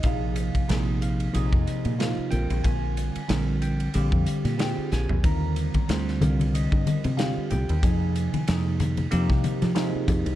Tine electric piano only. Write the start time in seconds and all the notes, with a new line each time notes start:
0.05 C3 F3 A#3 D#4 G#4 F5
0.68 C3 F3 A#3 D#4 G#4
1.02 F5
1.33 C3 F3 A#3 D#4 G#4 D#5
1.98 C3 F3 A#3 D#4 F4 F5
2.31 D3 G3 C4 F4 A#4 G5
2.64 G#5
3.28 D3 G3 C4 F4 A#4
3.62 G5
3.94 D3 G3 C4 F4 G4 F5
4.58 D3 C4 F4 G4 G#4
4.63 G5
4.92 G#5
5.23 D3 G3 C4 F4 A#4 A#5
5.88 D3 G3 C4 F4 C5
6.20 D3 G3 C4 F4 A#4 F5
6.54 D#5
7.17 D3 G3 C4 F4 G4 F5
7.51 G5
7.79 C3 F3 A#3 G5
7.83 D#4 G#4 G#5
8.48 C3 F3 A#3 D#4 G#4
9.10 C3 F3 A#3 D#4 G4
9.75 C3 F3 A#3 D#4 G#4